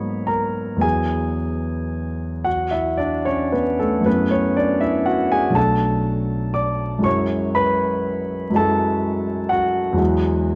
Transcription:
grand piano
Already playing: G#2 F#3 A#3 B3 D#4 B4 C#5 B5 C#6
0.27 A#4 A#5
0.76 E2 F#3 B3
0.81 E4 G#4 G#5
2.44 F#4 F#5
2.71 E4 E5
2.98 D4 D5
3.25 C#4 C#5
3.52 B3 B4
3.79 A3 A4
4.01 F#2 F#3 A3
4.05 B3 C#4 E4 B4
4.31 C#4 C#5
4.57 D4 D5
4.81 E4 E5
5.06 F#4 F#5
5.32 G#4 G#5
5.50 B1 F#3 A3
5.54 D4 F#4 A4 A5
6.54 D5 D6
6.99 F#2 F#3 G#3
7.03 E4 F#4 C#5 C#6
7.55 B4 B5
8.50 F#2 F#3 G#3
8.54 E4 F#4 A4 A5
9.49 F#4 F#5
9.93 E2 F#3 G#3
9.97 E4 F#4

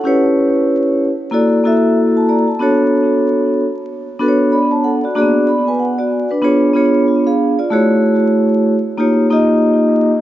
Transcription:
vibraphone
Already playing: A4 F#5
0.04 C#4 E4 G4 B4 C#5
1.31 A#3 E4 F#4 A4 D5
1.64 A#3 E4 F#4 A4 E5
2.17 A5
2.29 D5 A#5
2.48 A5
2.59 B3 D4 F#4 A4 C#5
4.19 B3 D4 F#4 A4 B4
4.28 C#5
4.52 D5 B5
4.71 C#5 A5
4.84 A4 F#5
5.04 F#4 D5
5.15 A#3 D4 F#4 G#4 D5
5.22 B3
5.48 D5 B5
5.67 B4 G#5
5.79 F#5
5.99 F#4 D5
6.31 D4 B4
6.42 B3 D4 F4 G#4 C#5
6.73 B3 D4 F4 G#4 C#5
7.07 F4 C#5
7.27 G#4 F5
7.59 F4 D5
7.70 A3 E4 F#4 G#4 C#5
8.97 A#3 D#4 F4 G4 C#5
9.30 A#3 D#4 F4 G4 D#5

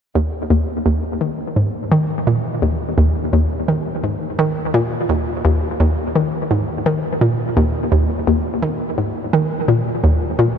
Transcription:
synth arpeggio sound
0.15 D#2
0.50 D#2
0.86 D#2
1.21 D#3
1.56 G#2
1.92 D#3
2.27 A#2
2.62 D#2
2.98 D#2
3.33 D#2
3.68 D#3
4.03 G#2
4.39 D#3
4.74 A#2
5.09 D#2
5.45 D#2
5.80 D#2
6.15 D#3
6.51 G#2
6.86 D#3
7.21 A#2
7.57 D#2
7.92 D#2
8.27 D#2
8.62 D#3
8.98 G#2
9.33 D#3
9.68 A#2
10.04 D#2
10.39 A#2

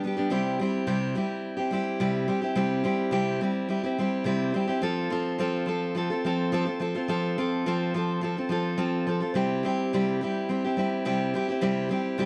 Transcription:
steel-string acoustic guitar
0.04 G3 B3 D4 G4
0.17 G3 B3 D4 G4
0.30 C3 G3 C4 E4 G4
0.59 G3 C4 E4 G4
0.87 C3 G3 C4 E4 G4
1.15 G3 C4 E4 G4
1.57 C4 E4 G4
1.71 G3 C4 E4 G4
2.00 C3 G3 C4 E4 G4
2.28 G3 C4 E4 G4
2.42 C4 E4 G4
2.55 C3 G3 C4 E4 G4
2.84 G3 C4 E4 G4
3.11 C3 G3 C4 E4 G4
3.41 G3 C4 E4 G4
3.69 G3 C4 E4 G4
3.83 C4 E4 G4
3.98 G3 C4 E4 G4
4.24 C3 G3 C4 E4 G4
4.54 G3 C4 E4 G4
4.67 C4 E4 G4
4.82 F3 C4 F4 A4
5.10 F3 C4 F4 A4
5.38 F3 C4 F4 A4
5.66 F3 C4 F4 A4
5.95 F3 C4 F4 A4
6.10 C4 F4 A4
6.25 F3 C4 F4 A4
6.52 F3 C4 F4 A4
6.65 C4 F4 A4
6.80 F3 C4 F4 A4
6.95 C4 F4 A4
7.08 F3 C4 F4 A4
7.38 F3 C4 F4 A4
7.66 F3 C4 F4 A4
7.94 F3 C4 F4 A4
8.21 F3 C4 F4 A4
8.37 C4 F4 A4
8.49 F3 C4 F4 A4
8.77 F3 C4 F4 A4
9.07 F3 C4 F4 A4
9.20 C4 F4 A4
9.34 C3 G3 C4 E4 G4
9.63 G3 C4 E4 G4
9.93 C3 G3 C4 E4 G4
10.21 G3 C4 E4 G4
10.49 G3 C4 E4 G4
10.64 C4 E4 G4
10.77 G3 C4 E4 G4
11.05 C3 G3 C4 E4 G4
11.34 G3 C4 E4 G4
11.48 C4 E4 G4
11.61 C3 G3 C4 E4 G4
11.89 G3 C4 E4 G4
12.18 C3 G3 C4 E4 G4

